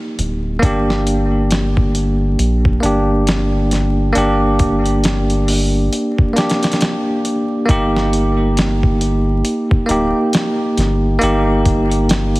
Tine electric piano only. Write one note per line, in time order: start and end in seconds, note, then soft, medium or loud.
0.59 2.77 A#3 medium
0.59 2.79 D4 medium
0.65 2.80 G4 medium
2.80 4.10 A#3 medium
2.80 4.11 D4 medium
2.86 4.12 G4 medium
4.13 6.30 A#3 medium
4.13 6.32 D4 medium
4.18 6.33 G4 loud
6.33 7.63 A#3 medium
6.33 7.64 D4 medium
6.38 7.65 G4 medium
7.66 9.83 A#3 medium
7.66 9.85 D#4 medium
7.71 9.86 G4 loud
9.86 11.16 A#3 medium
9.86 11.17 D#4 medium
9.91 11.18 G4 medium
11.19 12.40 A#3 loud
11.19 12.40 D#4 medium
11.24 12.40 G4 loud